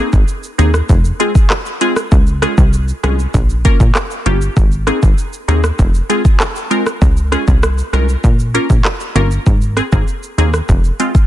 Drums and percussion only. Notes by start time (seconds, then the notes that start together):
0.13 kick, shaker
0.28 shaker
0.43 shaker
0.59 closed hi-hat, shaker
0.74 cross-stick, shaker
0.89 kick, shaker
1.05 shaker
1.20 closed hi-hat, shaker
1.35 kick, shaker
1.50 cross-stick, clap, shaker
1.66 shaker
1.81 closed hi-hat, shaker
1.96 cross-stick, shaker
2.12 kick, shaker
2.27 shaker
2.42 cross-stick, closed hi-hat, shaker
2.58 kick, shaker
2.73 shaker
2.88 shaker
3.04 cross-stick, closed hi-hat, shaker
3.19 shaker
3.34 kick, shaker
3.50 shaker
3.65 kick, closed hi-hat, shaker
3.80 kick, shaker
3.95 cross-stick, clap, shaker
4.11 shaker
4.26 closed hi-hat, shaker
4.41 shaker
4.57 kick, shaker
4.72 shaker
4.87 cross-stick, closed hi-hat, shaker
5.02 kick, shaker
5.18 shaker
5.33 shaker
5.49 closed hi-hat, shaker
5.64 cross-stick, shaker
5.79 kick, shaker
5.94 shaker
6.10 closed hi-hat, shaker
6.25 kick, shaker
6.40 cross-stick, clap, shaker
6.56 shaker
6.71 closed hi-hat, shaker
6.87 cross-stick, shaker
7.02 kick, shaker
7.17 shaker
7.32 cross-stick, closed hi-hat, shaker
7.47 kick, shaker
7.63 cross-stick, shaker
7.78 shaker
7.93 cross-stick, closed hi-hat, shaker
8.09 shaker
8.24 kick, shaker
8.39 shaker
8.55 closed hi-hat, shaker
8.70 kick, shaker
8.85 cross-stick, clap, shaker
9.00 shaker
9.16 closed hi-hat, shaker
9.31 shaker
9.46 kick, shaker
9.61 shaker
9.77 cross-stick, closed hi-hat, shaker
9.92 kick, shaker
10.08 shaker
10.23 shaker
10.38 closed hi-hat, shaker
10.54 cross-stick, shaker
10.69 kick, shaker
10.84 shaker
11.00 closed hi-hat, shaker
11.15 kick, shaker